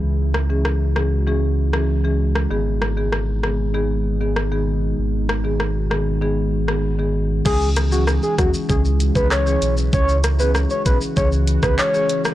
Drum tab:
CC |----------------|----------------|----------------|x---------------|
HH |----------------|----------------|----------------|--x---x---x---x-|
SH |----------------|----------------|----------------|xxxxxxxxxxxxxxxx|
CP |----------------|----------------|----------------|------------x---|
SD |--r-r-r----r---r|--r-r-r-----r---|--r-r-r----r----|--r-r-r-----r---|
BD |----------------|----------------|----------------|o-----o-o--o----|

CC |----------------|
HH |--x---x---x---x-|
SH |xxxxxxxxxxxxxxxx|
CP |------------x---|
SD |--r-r------r---r|
BD |o-----o-o--o----|